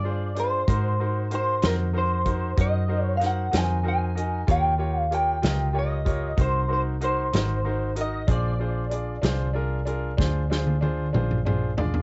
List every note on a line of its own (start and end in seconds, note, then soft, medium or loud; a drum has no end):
0.00 0.65 G2 medium
0.00 0.28 D4 soft
0.00 0.39 D5 medium
0.04 0.28 F4 soft
0.04 0.28 G#4 soft
0.04 0.29 C5 soft
0.35 0.59 D4 soft
0.35 0.60 F4 soft
0.35 0.60 G#4 soft
0.35 0.60 C5 soft
0.35 closed hi-hat soft
0.40 1.34 C5 medium
0.67 1.60 G#2 medium
0.67 0.91 D#4 medium
0.67 0.92 F#4 soft
0.67 0.92 A#4 medium
0.67 0.92 C5 medium
0.67 kick medium
0.67 closed hi-hat medium
1.00 1.23 D#4 soft
1.00 1.24 F#4 soft
1.00 1.24 A#4 soft
1.00 1.24 C5 soft
1.30 1.55 D#4 soft
1.30 1.55 F#4 soft
1.30 1.55 A#4 soft
1.30 1.55 C5 medium
1.30 closed hi-hat soft
1.35 1.66 C5 medium
1.62 2.55 F2 medium
1.62 1.86 D#4 soft
1.62 1.87 F#4 soft
1.62 1.87 A#4 soft
1.62 1.87 C5 medium
1.62 snare medium
1.62 closed hi-hat medium
1.67 1.75 A#4 medium
1.93 2.18 D#4 soft
1.93 2.18 F#4 soft
1.93 2.18 A#4 soft
1.93 2.18 C5 soft
1.98 2.56 C5 medium
2.25 2.49 D#4 soft
2.25 2.50 F#4 soft
2.25 2.50 A#4 soft
2.25 2.50 C5 medium
2.25 kick medium
2.25 closed hi-hat soft
2.57 3.50 F#2 medium
2.57 2.81 D#4 soft
2.57 2.81 F#4 soft
2.57 2.82 A#4 soft
2.57 2.82 C5 soft
2.57 kick medium
2.57 closed hi-hat medium
2.61 3.04 D#5 medium
2.88 3.13 D#4 soft
2.88 3.13 F#4 soft
2.88 3.13 A#4 soft
2.88 3.13 C5 soft
3.04 3.17 C#5 medium
3.17 3.44 D#4 soft
3.17 3.44 F#4 soft
3.17 3.45 A#4 soft
3.17 3.45 C5 soft
3.17 3.23 F5 medium
3.21 snare soft
3.21 closed hi-hat soft
3.26 3.56 F#5 medium
3.51 4.45 F2 medium
3.51 3.76 D#4 soft
3.51 3.76 F#4 soft
3.51 3.77 A#4 soft
3.51 3.77 C5 soft
3.51 snare medium
3.51 closed hi-hat medium
3.58 3.87 G#5 medium
3.83 4.08 D#4 soft
3.83 4.08 F#4 soft
3.83 4.08 A#4 soft
3.83 4.09 C5 soft
3.88 4.46 G#5 medium
4.15 4.39 D#4 soft
4.15 4.40 F#4 soft
4.15 4.40 A#4 soft
4.15 4.40 D#5 medium
4.15 closed hi-hat medium
4.47 5.40 D#2 medium
4.47 4.71 F4 medium
4.47 4.71 G4 medium
4.47 4.72 A#4 medium
4.47 4.72 C#5 medium
4.47 kick loud
4.47 closed hi-hat medium
4.51 4.99 G5 medium
4.78 5.02 F4 soft
4.78 5.03 G4 soft
4.78 5.03 A#4 soft
4.78 5.03 C#5 medium
4.99 5.13 F5 medium
5.11 5.35 F4 soft
5.11 5.35 G4 soft
5.11 5.35 A#4 soft
5.11 5.35 C#5 soft
5.11 5.78 G5 medium
5.11 closed hi-hat soft
5.42 6.35 C#2 medium
5.42 5.66 F4 medium
5.42 5.66 G4 soft
5.42 5.67 A#4 soft
5.42 5.67 D#5 medium
5.42 snare medium
5.42 closed hi-hat medium
5.73 5.97 F4 soft
5.73 5.98 G4 soft
5.73 5.98 A#4 soft
5.73 5.98 C#5 medium
5.79 6.41 D#5 medium
6.05 6.29 F4 soft
6.05 6.30 G4 soft
6.05 6.30 A#4 soft
6.05 6.30 C#5 medium
6.05 kick medium
6.05 closed hi-hat soft
6.37 7.30 C2 medium
6.37 6.61 D#4 soft
6.37 6.61 F#4 soft
6.37 6.62 A#4 soft
6.37 6.62 C5 medium
6.37 kick medium
6.37 closed hi-hat medium
6.41 6.72 C5 medium
6.68 6.93 D#4 soft
6.68 6.93 F#4 soft
6.68 6.93 A#4 soft
6.68 6.93 C5 soft
6.73 6.81 C5 medium
7.01 7.25 D#4 soft
7.01 7.25 F#4 soft
7.01 7.25 A#4 soft
7.01 7.26 C5 medium
7.01 7.94 C5 medium
7.01 closed hi-hat soft
7.33 8.25 G#1 medium
7.33 7.57 D#4 medium
7.33 7.57 F#4 soft
7.33 7.57 A#4 soft
7.33 7.57 C5 medium
7.33 snare medium
7.33 closed hi-hat medium
7.65 7.88 D#4 soft
7.65 7.89 F#4 soft
7.65 7.89 A#4 soft
7.65 7.89 C5 medium
7.96 8.20 D#4 soft
7.96 8.20 F#4 soft
7.96 8.20 A#4 soft
7.96 8.21 D#5 soft
7.96 closed hi-hat medium
8.01 8.31 D#5 medium
8.27 9.20 A#1 medium
8.27 8.51 D4 medium
8.27 8.52 F4 medium
8.27 8.52 G#4 soft
8.27 8.52 C5 medium
8.27 kick medium
8.27 closed hi-hat medium
8.32 11.43 D5 medium
8.59 8.83 D4 soft
8.59 8.83 F4 soft
8.59 8.84 G#4 soft
8.59 8.84 C5 medium
8.90 9.14 D4 soft
8.90 9.15 F4 soft
8.90 9.15 G#4 soft
8.90 9.15 D5 soft
8.90 closed hi-hat soft
9.22 10.15 C2 medium
9.22 9.46 D4 medium
9.22 9.46 F4 medium
9.22 9.47 G#4 medium
9.22 9.47 C5 medium
9.22 snare medium
9.22 closed hi-hat medium
9.54 9.78 D4 medium
9.54 9.78 F4 medium
9.54 9.79 G#4 soft
9.54 9.79 A#4 medium
9.85 10.10 D4 medium
9.85 10.10 F4 soft
9.85 10.10 G#4 soft
9.85 10.11 A#4 medium
9.85 closed hi-hat soft
10.17 11.11 D2 medium
10.17 10.42 D4 medium
10.17 10.42 F4 soft
10.17 10.42 G#4 soft
10.17 10.42 C5 medium
10.17 kick medium
10.17 snare soft
10.50 10.74 D4 soft
10.50 10.74 F4 soft
10.50 10.74 G#4 medium
10.50 10.74 C5 medium
10.50 snare medium
10.67 high tom medium
10.81 11.05 D4 medium
10.81 11.05 F4 soft
10.81 11.06 G#4 soft
10.81 11.06 C5 medium
10.81 high tom medium
11.13 12.02 A#1 medium
11.13 11.37 D4 medium
11.13 11.37 F4 medium
11.13 11.38 G#4 soft
11.13 11.38 C5 medium
11.13 mid tom medium
11.31 mid tom medium
11.45 11.69 D4 soft
11.45 11.69 F4 soft
11.45 11.70 G#4 soft
11.45 11.70 C5 medium
11.45 mid tom medium
11.77 12.01 D4 medium
11.77 12.01 F4 soft
11.77 12.01 G#4 soft
11.77 12.02 D5 medium
11.77 floor tom medium
11.94 floor tom medium